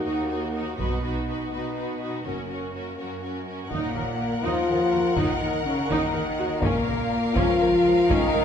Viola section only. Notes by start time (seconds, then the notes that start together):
0.05 D#4
0.29 D#4
0.53 D#4
0.78 D#4
1.03 D#4
1.28 D#4
1.52 D#4
1.75 D#4
2.01 D#4
2.25 C#4
2.48 C#4
2.73 C#4
2.98 C#4
3.22 C#4
3.47 C#4
3.71 D#4
3.95 A#4
4.44 D#4
4.68 A#4
4.92 F#4
5.17 D#4
5.42 A#4
5.90 D#4
6.14 A#4
6.39 F#4
6.63 C#4
6.88 A#4
7.35 C#4
7.61 A#4
7.84 F4
8.09 C#4
8.34 A#4